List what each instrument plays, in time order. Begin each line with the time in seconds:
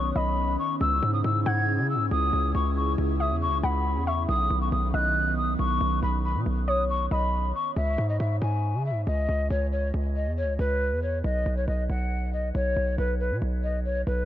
Already playing: 808-style bass B1, analog synth pad D#3 B3 C#4, synth pluck C#5, flute C#6
0.16 808-style bass B1, synth pluck D#5, flute B5
0.59 flute C#6
0.81 808-style bass C#2, analog synth pad C#3 E4 G#4, flute E6
1.03 808-style bass G#2
1.13 flute D#6
1.24 808-style bass G#2, flute E6
1.46 808-style bass G#2, synth pluck F#5, flute G#6
1.79 808-style bass C#3
1.90 flute E6
1.95 808-style bass G#2
2.11 808-style bass C#2, flute D#6
2.33 808-style bass C#2
2.55 808-style bass C#2, flute C#6
2.77 flute C#6
2.98 808-style bass C#2
3.20 synth pluck E5, flute D#6
3.31 808-style bass E2
3.42 flute C#6
3.47 808-style bass C#2
3.63 808-style bass C#2, synth pluck F#5, flute B5
3.96 808-style bass E2
4.07 synth pluck E5, flute C#6
4.29 808-style bass B1, analog synth pad D#3 B3, flute D#6
4.50 808-style bass B1
4.61 flute C#6
4.72 808-style bass B1, flute D#6
4.94 808-style bass B1, synth pluck D#5, flute F#6
5.37 flute D#6
5.59 808-style bass B1, flute C#6
5.81 808-style bass B1
6.03 808-style bass B1, flute B5
6.24 flute B5
6.35 808-style bass B2
6.46 808-style bass B1
6.68 synth pluck C#5, flute D#6
6.90 flute C#6
7.11 808-style bass B1, synth pluck D#5, flute B5
7.55 flute C#6
7.76 808-style bass C#2, flute E5
7.98 808-style bass G#2
8.09 flute D#5
8.20 808-style bass G#2, flute E5
8.42 808-style bass G#2, flute G#5
8.74 808-style bass C#3
8.85 flute E5
8.91 808-style bass G#2
9.07 808-style bass C#2, flute D#5
9.29 808-style bass C#2
9.50 808-style bass C#2, flute C#5
9.72 flute C#5
9.94 808-style bass C#2
10.16 flute D#5
10.27 808-style bass E2
10.37 flute C#5
10.43 808-style bass C#2
10.59 808-style bass C#2, flute B4
10.92 808-style bass E2
11.03 flute C#5
11.24 808-style bass B1, flute D#5
11.46 808-style bass B1
11.57 flute C#5
11.68 808-style bass B1, flute D#5
11.90 808-style bass B1, flute F#5
12.33 flute D#5
12.55 808-style bass B1, flute C#5
12.77 808-style bass B1
12.98 808-style bass B1, flute B4
13.20 flute B4
13.31 808-style bass B2
13.42 808-style bass B1
13.63 flute D#5
13.85 flute C#5
14.07 808-style bass B1, flute B4